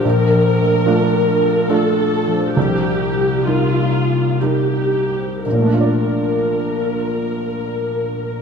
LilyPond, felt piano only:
\new Staff \with { instrumentName = "Felt piano" } { \time 3/4 \key bes \major \tempo 4 = 63 bes,,4 <a d' f'>4 <a d' f'>4 | c,4 <g ees' bes'>4 <g ees' bes'>4 | <bes,, bes, a d' f' d''>2. | }